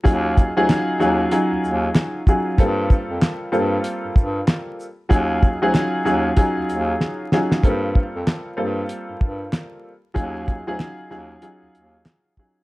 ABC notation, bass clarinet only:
X:1
M:4/4
L:1/16
Q:"Swing 16ths" 1/4=95
K:Eblyd
V:1 name="Bass clarinet" clef=bass
E,,3 D,, z2 E,,2 z E,, E,,2 z4 | G,,3 F,, z2 G,,2 z G,, G,,2 z4 | E,,3 D,, z2 E,,2 z E,, E,,2 z4 | G,,3 F,, z2 G,,2 z G,, G,,2 z4 |
E,,3 D,, z2 E,,2 z E,, E,,2 z4 |]